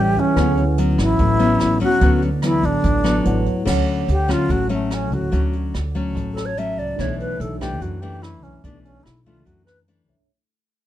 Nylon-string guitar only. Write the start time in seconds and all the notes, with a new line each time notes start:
Already playing: E3 G3 C#4
0.37 F#3 B3 C#4
0.78 F#3 B3 C#4
1.19 A2
1.39 F#3 B3 C#4
1.80 F#3 B3 C#4
2.01 D3 F#3 B3 C#4
2.43 F#3 B3
2.84 A2
3.04 F#3 B3
3.65 D3 F#3 A3 C#4
4.28 F#3 A3 C#4
4.49 A2
4.69 F#3 A3 C#4
5.31 D3 F#3 A3 C#4
5.95 F#3 A3 C#4
6.15 A2
6.58 F#3 A3 C#4
6.99 B2 E3 A3 D4
7.61 E3 A3 D4
7.82 F#2
8.02 E3 A3 D4
8.64 B2 E3 A3 D4
9.26 E3 A3 D4
9.45 F#2
9.88 E3 A3 D4